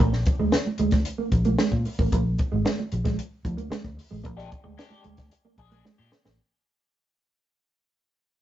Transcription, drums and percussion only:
0.00 kick loud
0.13 snare soft
0.26 kick loud
0.26 closed hi-hat medium
0.26 muted conga soft
0.41 high conga medium
0.52 snare medium
0.52 closed hi-hat medium
0.66 high conga medium
0.78 closed hi-hat medium
0.78 muted conga soft
0.78 low conga medium
0.91 kick loud
0.91 snare soft
0.91 closed hi-hat medium
0.91 high conga medium
1.05 closed hi-hat loud
1.32 kick medium
1.32 closed hi-hat medium
1.32 muted conga soft
1.45 closed hi-hat medium
1.45 high conga medium
1.59 snare loud
1.59 closed hi-hat medium
1.59 muted conga soft
1.59 high conga medium
1.72 kick medium
1.85 open hi-hat medium
1.85 muted conga soft
1.99 kick loud
2.12 kick loud
2.12 closed hi-hat loud
2.12 muted conga soft
2.12 low conga medium
2.38 kick loud
2.38 closed hi-hat medium
2.53 high conga medium
2.65 snare loud
2.65 closed hi-hat medium
2.65 muted conga soft
2.79 high conga medium
2.92 closed hi-hat medium
2.92 low conga medium
3.05 kick loud
3.05 snare soft
3.05 closed hi-hat medium
3.05 high conga medium
3.19 closed hi-hat loud
3.45 kick medium
3.45 closed hi-hat medium
3.58 closed hi-hat medium
3.58 high conga medium
3.71 snare loud
3.71 closed hi-hat medium
3.71 muted conga soft
3.71 high conga medium
3.85 kick medium
3.99 open hi-hat medium
4.24 kick loud
4.24 closed hi-hat loud
4.24 muted conga soft
4.24 low conga medium
4.38 snare soft
4.51 kick loud
4.51 closed hi-hat medium
4.51 muted conga soft
4.65 high conga medium
4.79 snare loud
4.79 closed hi-hat medium
4.90 high conga medium
5.04 closed hi-hat medium
5.04 low conga medium
5.17 kick loud
5.17 snare soft
5.17 closed hi-hat medium
5.17 high conga medium
5.31 closed hi-hat loud
5.31 muted conga soft
5.58 kick medium
5.58 closed hi-hat medium
5.58 muted conga soft
5.71 closed hi-hat medium
5.71 high conga medium
5.85 snare medium
5.85 muted conga soft
5.85 high conga medium
6.12 snare medium
6.25 snare medium

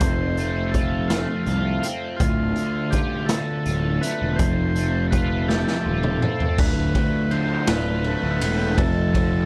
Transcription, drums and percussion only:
0.00 kick loud
0.00 closed hi-hat medium
0.37 closed hi-hat medium
0.74 kick medium
0.74 closed hi-hat medium
1.10 snare loud
1.10 closed hi-hat medium
1.46 closed hi-hat medium
1.83 closed hi-hat medium
2.20 kick loud
2.20 closed hi-hat loud
2.56 closed hi-hat medium
2.92 kick medium
2.92 closed hi-hat medium
3.29 snare loud
3.29 closed hi-hat loud
3.66 closed hi-hat medium
4.03 closed hi-hat medium
4.39 kick loud
4.39 closed hi-hat loud
4.76 closed hi-hat medium
5.12 kick medium
5.12 closed hi-hat medium
5.49 snare medium
5.68 snare medium
6.03 mid tom medium
6.22 mid tom medium
6.40 floor tom medium
6.58 kick loud
6.58 crash loud
6.95 kick medium
6.95 ride medium
7.31 ride medium
7.67 snare loud
7.67 ride loud
8.04 ride medium
8.41 ride medium
8.78 kick loud
8.78 ride loud
9.14 kick medium
9.14 ride medium

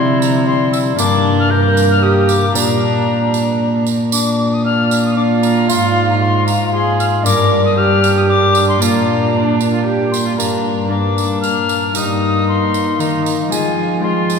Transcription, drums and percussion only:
0.22 tambourine medium
0.73 tambourine medium
0.99 tambourine medium
1.77 tambourine soft
2.29 tambourine soft
2.55 tambourine medium
3.34 tambourine soft
3.86 tambourine medium
4.12 tambourine medium
4.91 tambourine medium
5.43 tambourine medium
5.70 tambourine medium
6.48 tambourine soft
7.00 tambourine medium
7.26 tambourine medium
8.04 tambourine medium
8.55 tambourine medium
8.82 tambourine medium
9.60 tambourine soft
10.14 tambourine medium
10.40 tambourine medium
11.18 tambourine soft
11.44 tambourine soft
11.69 tambourine medium
11.95 tambourine medium
12.74 tambourine soft
13.00 tambourine soft
13.26 tambourine medium
13.52 tambourine medium
14.30 tambourine soft

